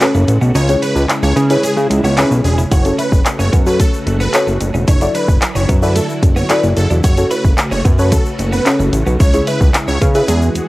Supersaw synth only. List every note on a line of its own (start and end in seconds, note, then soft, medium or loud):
0.55 0.75 C#5 loud
0.82 1.02 B4 medium
1.23 1.33 C#5 medium
1.50 1.60 B4 medium
1.64 1.74 G#4 loud
2.04 2.14 C#5 medium
2.17 2.28 B4 medium
2.45 2.55 G#4 medium
2.71 2.92 C#5 loud
2.99 3.19 B4 medium
3.39 3.49 C#5 medium
3.66 3.76 B4 medium
3.80 3.90 A4 medium
4.20 4.40 B4 medium
4.88 5.08 C#5 loud
5.15 5.35 B4 medium
5.56 5.66 C#5 medium
5.83 5.93 B4 medium
5.96 6.06 A4 medium
6.37 6.47 C#5 medium
6.50 6.60 B4 medium
6.77 6.87 A4 medium
7.04 7.24 C#5 loud
7.31 7.51 B4 medium
7.72 7.82 C#5 medium
7.99 8.09 B4 medium
8.12 8.22 A4 medium
8.53 8.73 B4 medium
9.20 9.40 C#5 loud
9.47 9.67 B4 medium
9.88 9.98 C#5 medium
10.15 10.25 B4 medium
10.29 10.39 G#4 medium